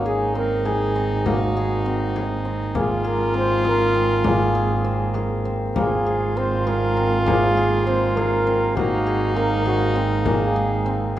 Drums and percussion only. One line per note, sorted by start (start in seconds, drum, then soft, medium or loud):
0.66 frame drum soft
0.96 frame drum soft
1.26 frame drum medium
2.16 frame drum soft
2.45 frame drum soft
2.75 frame drum medium
3.65 frame drum soft
3.95 frame drum soft
4.24 frame drum medium
5.14 frame drum soft
5.45 frame drum soft
5.76 frame drum medium
6.67 frame drum soft
6.97 frame drum soft
7.28 frame drum medium
8.17 frame drum soft
8.47 frame drum soft
8.77 frame drum medium
9.66 frame drum soft
10.25 frame drum medium